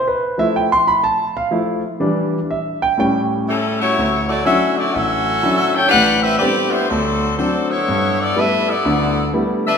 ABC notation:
X:1
M:4/4
L:1/8
Q:"Swing" 1/4=123
K:D
V:1 name="Saxophone section"
z8 | z6 [G,CEA] [A,EFc]- | [A,EFc] [A,EFd] [CFAe] [A,EFd] [CFAe]3 [EAcg] | [DGBf] [=CGBe] [CGBd] [G,B,E=c] [F,CDA]2 [F,CDA] [B,EA^c]- |
[B,EAc] [B,EAd] [DABe] [B,EAd]3 z [DABe] |]
V:2 name="Grand piano"
B e (3g =c' b a =f z2 | z2 e g g z3 | z8 | z8 |
z8 |]
V:3 name="Grand piano"
z [=F,A,E] z4 [F,A,E] z | [E,G,D] z3 [A,,G,C]4 | D,,2 [F,CDE] z A,,,2 [F,CDE] z | [A,,,A,,]2 [G,A,B,=CD] z D,,2 [F,CD] z |
G,,2 [G,A,B,E] z [D,,D,]2 [G,A,B,E] z |]